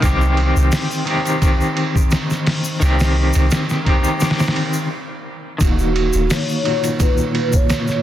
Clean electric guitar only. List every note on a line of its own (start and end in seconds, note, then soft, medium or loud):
0.00 1.02 D#3 medium
0.00 1.03 C4 medium
0.05 1.05 G4 loud
1.06 2.77 D#3 medium
1.06 2.78 C4 medium
1.11 2.79 G4 loud
2.80 3.81 D#3 loud
2.80 3.83 C4 medium
2.85 3.84 G4 loud
3.85 4.87 D#3 medium
3.85 4.88 C4 medium
3.90 4.89 G4 loud
5.58 6.60 D#3 medium
5.58 6.61 A#3 medium
5.63 6.63 F#4 loud
6.63 8.02 A#2 medium
6.63 8.02 D#3 medium
6.68 8.02 F#4 loud